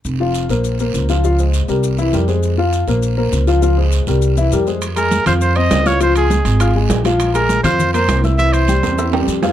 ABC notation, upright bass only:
X:1
M:4/4
L:1/8
Q:1/4=201
K:Fm
V:1 name="Upright bass" clef=bass
F,,,3 B,,,3 D,,2- | D,,3 C,,3 F,,2- | F,,3 B,,,3 D,,2- | D,,3 C,,3 F,,2- |
F,,3 F,,3 D,,2- | D,,3 A,,,3 B,,,2- | B,,,3 F,,3 C,,2- | C,,3 =E,,3 F,,2 |]